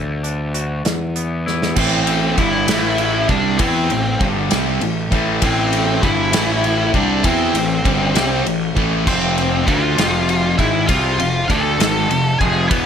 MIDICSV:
0, 0, Header, 1, 6, 480
1, 0, Start_track
1, 0, Key_signature, 0, "minor"
1, 0, Tempo, 608519
1, 1396, Time_signature, 6, 3, 24, 8
1, 10143, End_track
2, 0, Start_track
2, 0, Title_t, "Lead electric guitar"
2, 0, Program_c, 0, 29
2, 1406, Note_on_c, 0, 60, 65
2, 1412, Note_on_c, 0, 72, 74
2, 1851, Note_off_c, 0, 60, 0
2, 1854, Note_off_c, 0, 72, 0
2, 1878, Note_on_c, 0, 76, 102
2, 1884, Note_on_c, 0, 64, 75
2, 2568, Note_off_c, 0, 76, 0
2, 2571, Note_off_c, 0, 64, 0
2, 2596, Note_on_c, 0, 74, 96
2, 2601, Note_on_c, 0, 62, 76
2, 2824, Note_off_c, 0, 62, 0
2, 2833, Note_on_c, 0, 60, 52
2, 2835, Note_on_c, 0, 72, 55
2, 2845, Note_off_c, 0, 74, 0
2, 3345, Note_off_c, 0, 72, 0
2, 3346, Note_off_c, 0, 60, 0
2, 4289, Note_on_c, 0, 60, 74
2, 4306, Note_on_c, 0, 72, 93
2, 4732, Note_off_c, 0, 60, 0
2, 4756, Note_on_c, 0, 64, 80
2, 4767, Note_on_c, 0, 76, 102
2, 4786, Note_off_c, 0, 72, 0
2, 5445, Note_off_c, 0, 64, 0
2, 5450, Note_off_c, 0, 76, 0
2, 5490, Note_on_c, 0, 62, 68
2, 5491, Note_on_c, 0, 74, 80
2, 5707, Note_off_c, 0, 62, 0
2, 5720, Note_on_c, 0, 60, 63
2, 5723, Note_on_c, 0, 72, 62
2, 5730, Note_off_c, 0, 74, 0
2, 6645, Note_off_c, 0, 72, 0
2, 6646, Note_off_c, 0, 60, 0
2, 7159, Note_on_c, 0, 72, 81
2, 7170, Note_on_c, 0, 60, 70
2, 7609, Note_off_c, 0, 60, 0
2, 7627, Note_on_c, 0, 65, 74
2, 7628, Note_on_c, 0, 77, 79
2, 7650, Note_off_c, 0, 72, 0
2, 8316, Note_off_c, 0, 77, 0
2, 8317, Note_off_c, 0, 65, 0
2, 8344, Note_on_c, 0, 76, 93
2, 8359, Note_on_c, 0, 64, 76
2, 8574, Note_off_c, 0, 76, 0
2, 8577, Note_off_c, 0, 64, 0
2, 8578, Note_on_c, 0, 77, 92
2, 8595, Note_on_c, 0, 65, 73
2, 9031, Note_off_c, 0, 77, 0
2, 9039, Note_off_c, 0, 65, 0
2, 9055, Note_on_c, 0, 81, 98
2, 9075, Note_on_c, 0, 69, 85
2, 9748, Note_off_c, 0, 81, 0
2, 9758, Note_off_c, 0, 69, 0
2, 9770, Note_on_c, 0, 80, 96
2, 9787, Note_on_c, 0, 68, 80
2, 10003, Note_off_c, 0, 68, 0
2, 10006, Note_on_c, 0, 71, 85
2, 10023, Note_on_c, 0, 59, 67
2, 10025, Note_off_c, 0, 80, 0
2, 10143, Note_off_c, 0, 59, 0
2, 10143, Note_off_c, 0, 71, 0
2, 10143, End_track
3, 0, Start_track
3, 0, Title_t, "Clean electric guitar"
3, 0, Program_c, 1, 27
3, 0, Note_on_c, 1, 50, 64
3, 185, Note_on_c, 1, 62, 61
3, 428, Note_on_c, 1, 66, 63
3, 670, Note_off_c, 1, 62, 0
3, 671, Note_off_c, 1, 50, 0
3, 671, Note_off_c, 1, 66, 0
3, 675, Note_on_c, 1, 40, 65
3, 914, Note_on_c, 1, 59, 53
3, 1153, Note_on_c, 1, 64, 61
3, 1395, Note_off_c, 1, 64, 0
3, 1396, Note_off_c, 1, 59, 0
3, 1397, Note_off_c, 1, 40, 0
3, 10143, End_track
4, 0, Start_track
4, 0, Title_t, "Distorted electric guitar"
4, 0, Program_c, 2, 30
4, 1397, Note_on_c, 2, 45, 89
4, 1403, Note_on_c, 2, 52, 93
4, 1406, Note_on_c, 2, 57, 98
4, 1871, Note_off_c, 2, 45, 0
4, 1874, Note_off_c, 2, 52, 0
4, 1876, Note_off_c, 2, 57, 0
4, 1877, Note_on_c, 2, 43, 77
4, 1881, Note_on_c, 2, 50, 90
4, 1882, Note_on_c, 2, 55, 86
4, 2111, Note_off_c, 2, 43, 0
4, 2112, Note_off_c, 2, 50, 0
4, 2113, Note_off_c, 2, 55, 0
4, 2115, Note_on_c, 2, 45, 84
4, 2120, Note_on_c, 2, 52, 97
4, 2124, Note_on_c, 2, 57, 93
4, 2590, Note_off_c, 2, 45, 0
4, 2593, Note_off_c, 2, 52, 0
4, 2595, Note_off_c, 2, 57, 0
4, 2595, Note_on_c, 2, 48, 103
4, 2601, Note_on_c, 2, 55, 91
4, 2602, Note_on_c, 2, 60, 103
4, 2830, Note_off_c, 2, 48, 0
4, 2833, Note_off_c, 2, 55, 0
4, 2834, Note_off_c, 2, 60, 0
4, 2837, Note_on_c, 2, 52, 96
4, 2843, Note_on_c, 2, 59, 91
4, 2846, Note_on_c, 2, 64, 106
4, 3072, Note_off_c, 2, 52, 0
4, 3074, Note_off_c, 2, 59, 0
4, 3076, Note_off_c, 2, 64, 0
4, 3083, Note_on_c, 2, 45, 63
4, 3084, Note_on_c, 2, 52, 67
4, 3273, Note_off_c, 2, 45, 0
4, 3274, Note_off_c, 2, 52, 0
4, 3322, Note_on_c, 2, 43, 93
4, 3325, Note_on_c, 2, 50, 80
4, 3329, Note_on_c, 2, 55, 89
4, 3553, Note_off_c, 2, 50, 0
4, 3554, Note_off_c, 2, 43, 0
4, 3555, Note_off_c, 2, 55, 0
4, 3556, Note_on_c, 2, 48, 94
4, 3565, Note_on_c, 2, 55, 87
4, 3566, Note_on_c, 2, 60, 110
4, 3791, Note_off_c, 2, 48, 0
4, 3795, Note_off_c, 2, 55, 0
4, 3795, Note_off_c, 2, 60, 0
4, 3795, Note_on_c, 2, 45, 67
4, 3801, Note_on_c, 2, 52, 65
4, 3989, Note_off_c, 2, 45, 0
4, 3992, Note_off_c, 2, 52, 0
4, 4032, Note_on_c, 2, 45, 83
4, 4039, Note_on_c, 2, 57, 96
4, 4040, Note_on_c, 2, 52, 109
4, 4260, Note_off_c, 2, 45, 0
4, 4265, Note_off_c, 2, 52, 0
4, 4268, Note_off_c, 2, 57, 0
4, 4269, Note_on_c, 2, 45, 86
4, 4274, Note_on_c, 2, 52, 96
4, 4278, Note_on_c, 2, 57, 101
4, 4747, Note_off_c, 2, 45, 0
4, 4749, Note_off_c, 2, 52, 0
4, 4751, Note_off_c, 2, 57, 0
4, 4751, Note_on_c, 2, 43, 81
4, 4758, Note_on_c, 2, 50, 91
4, 4759, Note_on_c, 2, 55, 97
4, 4987, Note_off_c, 2, 50, 0
4, 4988, Note_off_c, 2, 43, 0
4, 4990, Note_on_c, 2, 45, 90
4, 4991, Note_off_c, 2, 55, 0
4, 4994, Note_on_c, 2, 52, 89
4, 4997, Note_on_c, 2, 57, 110
4, 5464, Note_off_c, 2, 45, 0
4, 5467, Note_off_c, 2, 52, 0
4, 5467, Note_on_c, 2, 48, 94
4, 5470, Note_off_c, 2, 57, 0
4, 5471, Note_on_c, 2, 55, 99
4, 5476, Note_on_c, 2, 60, 95
4, 5705, Note_off_c, 2, 48, 0
4, 5707, Note_off_c, 2, 55, 0
4, 5709, Note_off_c, 2, 60, 0
4, 5713, Note_on_c, 2, 52, 88
4, 5715, Note_on_c, 2, 59, 102
4, 5720, Note_on_c, 2, 64, 89
4, 5948, Note_off_c, 2, 52, 0
4, 5949, Note_off_c, 2, 59, 0
4, 5951, Note_off_c, 2, 64, 0
4, 5951, Note_on_c, 2, 45, 63
4, 5956, Note_on_c, 2, 52, 72
4, 6146, Note_off_c, 2, 45, 0
4, 6148, Note_off_c, 2, 52, 0
4, 6194, Note_on_c, 2, 43, 79
4, 6200, Note_on_c, 2, 50, 82
4, 6201, Note_on_c, 2, 55, 90
4, 6424, Note_off_c, 2, 55, 0
4, 6427, Note_off_c, 2, 43, 0
4, 6429, Note_off_c, 2, 50, 0
4, 6432, Note_on_c, 2, 48, 87
4, 6434, Note_on_c, 2, 55, 105
4, 6438, Note_on_c, 2, 60, 100
4, 6666, Note_off_c, 2, 48, 0
4, 6667, Note_off_c, 2, 55, 0
4, 6669, Note_off_c, 2, 60, 0
4, 6675, Note_on_c, 2, 45, 55
4, 6676, Note_on_c, 2, 52, 69
4, 6867, Note_off_c, 2, 45, 0
4, 6867, Note_off_c, 2, 52, 0
4, 6912, Note_on_c, 2, 45, 89
4, 6918, Note_on_c, 2, 52, 88
4, 6919, Note_on_c, 2, 57, 96
4, 7146, Note_off_c, 2, 45, 0
4, 7149, Note_off_c, 2, 52, 0
4, 7149, Note_off_c, 2, 57, 0
4, 7151, Note_on_c, 2, 41, 97
4, 7157, Note_on_c, 2, 48, 104
4, 7159, Note_on_c, 2, 53, 112
4, 7624, Note_off_c, 2, 41, 0
4, 7627, Note_off_c, 2, 48, 0
4, 7628, Note_off_c, 2, 53, 0
4, 7631, Note_on_c, 2, 50, 89
4, 7634, Note_on_c, 2, 57, 87
4, 7639, Note_on_c, 2, 62, 97
4, 7864, Note_off_c, 2, 50, 0
4, 7865, Note_off_c, 2, 57, 0
4, 7868, Note_off_c, 2, 62, 0
4, 7868, Note_on_c, 2, 41, 92
4, 7874, Note_on_c, 2, 48, 94
4, 7878, Note_on_c, 2, 53, 93
4, 8341, Note_off_c, 2, 41, 0
4, 8344, Note_off_c, 2, 48, 0
4, 8344, Note_on_c, 2, 44, 96
4, 8347, Note_off_c, 2, 53, 0
4, 8349, Note_on_c, 2, 51, 88
4, 8350, Note_on_c, 2, 56, 93
4, 8579, Note_off_c, 2, 44, 0
4, 8582, Note_off_c, 2, 51, 0
4, 8583, Note_off_c, 2, 56, 0
4, 8590, Note_on_c, 2, 48, 92
4, 8594, Note_on_c, 2, 55, 94
4, 8599, Note_on_c, 2, 60, 105
4, 8822, Note_off_c, 2, 48, 0
4, 8824, Note_off_c, 2, 55, 0
4, 8826, Note_off_c, 2, 60, 0
4, 8830, Note_on_c, 2, 41, 60
4, 8830, Note_on_c, 2, 48, 76
4, 9021, Note_off_c, 2, 41, 0
4, 9021, Note_off_c, 2, 48, 0
4, 9063, Note_on_c, 2, 50, 79
4, 9068, Note_on_c, 2, 57, 87
4, 9073, Note_on_c, 2, 62, 99
4, 9298, Note_off_c, 2, 50, 0
4, 9301, Note_off_c, 2, 57, 0
4, 9302, Note_on_c, 2, 44, 94
4, 9303, Note_off_c, 2, 62, 0
4, 9307, Note_on_c, 2, 51, 100
4, 9309, Note_on_c, 2, 56, 109
4, 9537, Note_off_c, 2, 44, 0
4, 9540, Note_off_c, 2, 51, 0
4, 9541, Note_off_c, 2, 56, 0
4, 9542, Note_on_c, 2, 41, 59
4, 9547, Note_on_c, 2, 48, 76
4, 9736, Note_off_c, 2, 41, 0
4, 9739, Note_off_c, 2, 48, 0
4, 9783, Note_on_c, 2, 41, 93
4, 9787, Note_on_c, 2, 48, 91
4, 9789, Note_on_c, 2, 53, 107
4, 10014, Note_off_c, 2, 41, 0
4, 10018, Note_on_c, 2, 40, 85
4, 10019, Note_off_c, 2, 48, 0
4, 10020, Note_off_c, 2, 53, 0
4, 10024, Note_on_c, 2, 47, 101
4, 10029, Note_on_c, 2, 52, 105
4, 10143, Note_off_c, 2, 40, 0
4, 10143, Note_off_c, 2, 47, 0
4, 10143, Note_off_c, 2, 52, 0
4, 10143, End_track
5, 0, Start_track
5, 0, Title_t, "Picked electric bass"
5, 0, Program_c, 3, 34
5, 0, Note_on_c, 3, 38, 80
5, 642, Note_off_c, 3, 38, 0
5, 670, Note_on_c, 3, 40, 72
5, 1363, Note_off_c, 3, 40, 0
5, 1395, Note_on_c, 3, 33, 96
5, 1846, Note_off_c, 3, 33, 0
5, 1873, Note_on_c, 3, 31, 95
5, 2099, Note_off_c, 3, 31, 0
5, 2119, Note_on_c, 3, 33, 76
5, 2568, Note_off_c, 3, 33, 0
5, 2596, Note_on_c, 3, 36, 95
5, 2821, Note_off_c, 3, 36, 0
5, 2840, Note_on_c, 3, 40, 94
5, 3063, Note_off_c, 3, 40, 0
5, 3078, Note_on_c, 3, 33, 74
5, 3302, Note_off_c, 3, 33, 0
5, 3318, Note_on_c, 3, 31, 101
5, 3542, Note_off_c, 3, 31, 0
5, 3552, Note_on_c, 3, 36, 79
5, 3779, Note_off_c, 3, 36, 0
5, 3800, Note_on_c, 3, 33, 68
5, 4023, Note_off_c, 3, 33, 0
5, 4037, Note_on_c, 3, 33, 96
5, 4262, Note_off_c, 3, 33, 0
5, 4278, Note_on_c, 3, 33, 90
5, 4726, Note_off_c, 3, 33, 0
5, 4759, Note_on_c, 3, 31, 85
5, 4982, Note_off_c, 3, 31, 0
5, 4992, Note_on_c, 3, 33, 92
5, 5443, Note_off_c, 3, 33, 0
5, 5476, Note_on_c, 3, 36, 91
5, 5700, Note_off_c, 3, 36, 0
5, 5713, Note_on_c, 3, 40, 89
5, 5938, Note_off_c, 3, 40, 0
5, 5948, Note_on_c, 3, 33, 79
5, 6175, Note_off_c, 3, 33, 0
5, 6193, Note_on_c, 3, 31, 93
5, 6417, Note_off_c, 3, 31, 0
5, 6433, Note_on_c, 3, 36, 82
5, 6657, Note_off_c, 3, 36, 0
5, 6673, Note_on_c, 3, 33, 69
5, 6897, Note_off_c, 3, 33, 0
5, 6915, Note_on_c, 3, 33, 96
5, 7137, Note_off_c, 3, 33, 0
5, 7154, Note_on_c, 3, 29, 99
5, 7601, Note_off_c, 3, 29, 0
5, 7631, Note_on_c, 3, 38, 93
5, 7854, Note_off_c, 3, 38, 0
5, 7863, Note_on_c, 3, 29, 95
5, 8315, Note_off_c, 3, 29, 0
5, 8351, Note_on_c, 3, 32, 86
5, 8573, Note_off_c, 3, 32, 0
5, 8591, Note_on_c, 3, 36, 92
5, 8813, Note_off_c, 3, 36, 0
5, 8819, Note_on_c, 3, 29, 74
5, 9046, Note_off_c, 3, 29, 0
5, 9067, Note_on_c, 3, 38, 92
5, 9289, Note_off_c, 3, 38, 0
5, 9293, Note_on_c, 3, 32, 88
5, 9523, Note_off_c, 3, 32, 0
5, 9538, Note_on_c, 3, 29, 76
5, 9765, Note_off_c, 3, 29, 0
5, 9785, Note_on_c, 3, 29, 101
5, 10009, Note_off_c, 3, 29, 0
5, 10026, Note_on_c, 3, 28, 97
5, 10143, Note_off_c, 3, 28, 0
5, 10143, End_track
6, 0, Start_track
6, 0, Title_t, "Drums"
6, 190, Note_on_c, 9, 42, 52
6, 269, Note_off_c, 9, 42, 0
6, 429, Note_on_c, 9, 42, 52
6, 508, Note_off_c, 9, 42, 0
6, 671, Note_on_c, 9, 42, 87
6, 680, Note_on_c, 9, 38, 106
6, 750, Note_off_c, 9, 42, 0
6, 759, Note_off_c, 9, 38, 0
6, 913, Note_on_c, 9, 42, 53
6, 992, Note_off_c, 9, 42, 0
6, 1161, Note_on_c, 9, 38, 39
6, 1240, Note_off_c, 9, 38, 0
6, 1281, Note_on_c, 9, 38, 72
6, 1360, Note_off_c, 9, 38, 0
6, 1390, Note_on_c, 9, 49, 127
6, 1395, Note_on_c, 9, 36, 106
6, 1469, Note_off_c, 9, 49, 0
6, 1474, Note_off_c, 9, 36, 0
6, 1633, Note_on_c, 9, 51, 70
6, 1712, Note_off_c, 9, 51, 0
6, 1874, Note_on_c, 9, 51, 75
6, 1876, Note_on_c, 9, 36, 93
6, 1953, Note_off_c, 9, 51, 0
6, 1955, Note_off_c, 9, 36, 0
6, 2114, Note_on_c, 9, 51, 117
6, 2123, Note_on_c, 9, 38, 116
6, 2192, Note_off_c, 9, 51, 0
6, 2202, Note_off_c, 9, 38, 0
6, 2351, Note_on_c, 9, 51, 64
6, 2430, Note_off_c, 9, 51, 0
6, 2593, Note_on_c, 9, 51, 58
6, 2596, Note_on_c, 9, 36, 96
6, 2672, Note_off_c, 9, 51, 0
6, 2675, Note_off_c, 9, 36, 0
6, 2831, Note_on_c, 9, 51, 98
6, 2837, Note_on_c, 9, 36, 101
6, 2910, Note_off_c, 9, 51, 0
6, 2916, Note_off_c, 9, 36, 0
6, 3076, Note_on_c, 9, 51, 59
6, 3155, Note_off_c, 9, 51, 0
6, 3318, Note_on_c, 9, 51, 70
6, 3319, Note_on_c, 9, 36, 112
6, 3397, Note_off_c, 9, 51, 0
6, 3398, Note_off_c, 9, 36, 0
6, 3555, Note_on_c, 9, 51, 105
6, 3564, Note_on_c, 9, 38, 118
6, 3633, Note_off_c, 9, 51, 0
6, 3643, Note_off_c, 9, 38, 0
6, 3796, Note_on_c, 9, 51, 66
6, 3875, Note_off_c, 9, 51, 0
6, 4037, Note_on_c, 9, 51, 62
6, 4038, Note_on_c, 9, 36, 81
6, 4116, Note_off_c, 9, 51, 0
6, 4117, Note_off_c, 9, 36, 0
6, 4274, Note_on_c, 9, 51, 105
6, 4278, Note_on_c, 9, 36, 108
6, 4353, Note_off_c, 9, 51, 0
6, 4357, Note_off_c, 9, 36, 0
6, 4517, Note_on_c, 9, 51, 73
6, 4595, Note_off_c, 9, 51, 0
6, 4757, Note_on_c, 9, 36, 100
6, 4757, Note_on_c, 9, 51, 74
6, 4836, Note_off_c, 9, 36, 0
6, 4836, Note_off_c, 9, 51, 0
6, 4994, Note_on_c, 9, 51, 125
6, 5004, Note_on_c, 9, 38, 127
6, 5073, Note_off_c, 9, 51, 0
6, 5083, Note_off_c, 9, 38, 0
6, 5237, Note_on_c, 9, 51, 60
6, 5315, Note_off_c, 9, 51, 0
6, 5473, Note_on_c, 9, 51, 63
6, 5474, Note_on_c, 9, 36, 85
6, 5552, Note_off_c, 9, 51, 0
6, 5553, Note_off_c, 9, 36, 0
6, 5711, Note_on_c, 9, 51, 96
6, 5714, Note_on_c, 9, 36, 106
6, 5789, Note_off_c, 9, 51, 0
6, 5793, Note_off_c, 9, 36, 0
6, 5953, Note_on_c, 9, 51, 77
6, 6032, Note_off_c, 9, 51, 0
6, 6195, Note_on_c, 9, 36, 105
6, 6195, Note_on_c, 9, 51, 75
6, 6274, Note_off_c, 9, 36, 0
6, 6274, Note_off_c, 9, 51, 0
6, 6432, Note_on_c, 9, 51, 106
6, 6442, Note_on_c, 9, 38, 127
6, 6511, Note_off_c, 9, 51, 0
6, 6521, Note_off_c, 9, 38, 0
6, 6677, Note_on_c, 9, 51, 64
6, 6755, Note_off_c, 9, 51, 0
6, 6914, Note_on_c, 9, 51, 60
6, 6915, Note_on_c, 9, 36, 96
6, 6993, Note_off_c, 9, 51, 0
6, 6994, Note_off_c, 9, 36, 0
6, 7154, Note_on_c, 9, 49, 99
6, 7155, Note_on_c, 9, 36, 114
6, 7233, Note_off_c, 9, 49, 0
6, 7234, Note_off_c, 9, 36, 0
6, 7396, Note_on_c, 9, 51, 63
6, 7475, Note_off_c, 9, 51, 0
6, 7634, Note_on_c, 9, 36, 108
6, 7635, Note_on_c, 9, 51, 67
6, 7713, Note_off_c, 9, 36, 0
6, 7714, Note_off_c, 9, 51, 0
6, 7875, Note_on_c, 9, 51, 108
6, 7884, Note_on_c, 9, 38, 116
6, 7954, Note_off_c, 9, 51, 0
6, 7963, Note_off_c, 9, 38, 0
6, 8115, Note_on_c, 9, 51, 62
6, 8194, Note_off_c, 9, 51, 0
6, 8352, Note_on_c, 9, 36, 87
6, 8352, Note_on_c, 9, 51, 66
6, 8431, Note_off_c, 9, 36, 0
6, 8431, Note_off_c, 9, 51, 0
6, 8587, Note_on_c, 9, 51, 104
6, 8590, Note_on_c, 9, 36, 106
6, 8666, Note_off_c, 9, 51, 0
6, 8669, Note_off_c, 9, 36, 0
6, 8831, Note_on_c, 9, 51, 74
6, 8910, Note_off_c, 9, 51, 0
6, 9069, Note_on_c, 9, 36, 93
6, 9070, Note_on_c, 9, 51, 73
6, 9148, Note_off_c, 9, 36, 0
6, 9149, Note_off_c, 9, 51, 0
6, 9310, Note_on_c, 9, 51, 108
6, 9319, Note_on_c, 9, 38, 127
6, 9389, Note_off_c, 9, 51, 0
6, 9398, Note_off_c, 9, 38, 0
6, 9549, Note_on_c, 9, 51, 72
6, 9628, Note_off_c, 9, 51, 0
6, 9787, Note_on_c, 9, 36, 82
6, 9789, Note_on_c, 9, 51, 57
6, 9866, Note_off_c, 9, 36, 0
6, 9868, Note_off_c, 9, 51, 0
6, 10024, Note_on_c, 9, 51, 108
6, 10025, Note_on_c, 9, 36, 121
6, 10103, Note_off_c, 9, 51, 0
6, 10104, Note_off_c, 9, 36, 0
6, 10143, End_track
0, 0, End_of_file